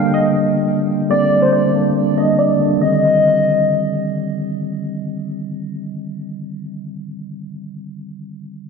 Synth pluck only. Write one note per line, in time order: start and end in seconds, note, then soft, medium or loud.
0.00 0.12 F5 medium
0.14 1.06 D#5 medium
1.11 1.41 D5 loud
1.42 1.52 C5 medium
1.53 2.13 D5 medium
2.18 2.37 D#5 medium
2.39 2.79 D5 medium
2.81 4.06 D#5 medium